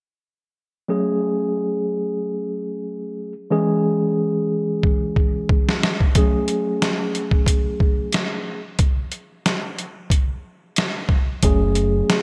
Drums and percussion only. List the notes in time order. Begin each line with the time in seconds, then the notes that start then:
4.83 kick
5.16 kick
5.49 kick
5.69 snare
5.83 snare
6.01 kick
6.15 kick, closed hi-hat
6.48 closed hi-hat
6.82 snare, closed hi-hat
7.15 closed hi-hat
7.31 kick
7.46 kick, closed hi-hat
7.80 kick
8.13 snare, closed hi-hat
8.79 kick, closed hi-hat
9.12 closed hi-hat
9.46 snare, closed hi-hat
9.79 closed hi-hat
10.10 kick, closed hi-hat
10.76 snare, closed hi-hat
11.09 kick
11.43 kick, closed hi-hat
11.75 closed hi-hat
12.10 snare, closed hi-hat